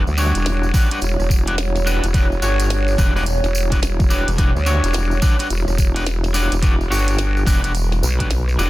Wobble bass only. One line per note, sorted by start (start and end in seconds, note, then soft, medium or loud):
0.07 0.33 D2 loud
0.35 0.72 E1 loud
1.02 1.17 E1 medium
1.19 2.01 E1 loud
2.04 2.40 E1 loud
2.42 2.96 G1 medium
3.44 4.25 E1 loud
4.56 4.81 D2 loud
4.84 5.21 E1 loud
5.50 5.65 E1 loud
5.68 6.49 E1 loud
6.52 6.89 E1 loud
6.90 7.45 G1 medium
8.03 8.57 B1 medium
8.58 8.70 E1 loud